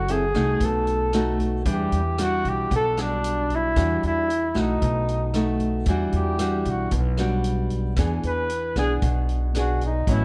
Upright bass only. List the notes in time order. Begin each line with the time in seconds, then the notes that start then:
Already playing: F#1
0.34 C2
0.60 B1
1.66 E2
1.92 E2
2.45 B1
2.71 B1
3.76 E2
4.03 E2
4.55 B1
4.82 B1
5.86 E2
6.13 E2
6.65 B1
6.92 B1
7.97 E2
8.23 E2
8.76 B1
9.02 B1
10.07 A1